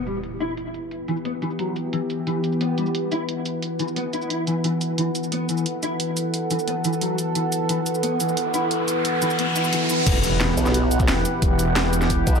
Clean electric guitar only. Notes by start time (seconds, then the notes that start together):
0.07 G3
0.40 E4
1.08 E3
1.25 B3
1.42 E3
1.59 F#3
1.93 E3
2.27 E3
2.61 B3
2.78 G3
3.12 E4
3.79 E3
3.96 B3
4.13 E4
4.30 E4
4.47 E3
4.64 E3
4.98 E3
5.32 B3
5.49 E3
5.83 E4
6.51 E3
6.68 B3
6.85 E3
7.01 F#3
7.35 E3
7.69 E3
8.03 B3
8.20 E3
8.54 E4
9.22 E3
9.39 B3
9.56 E4
9.73 E3
9.90 E3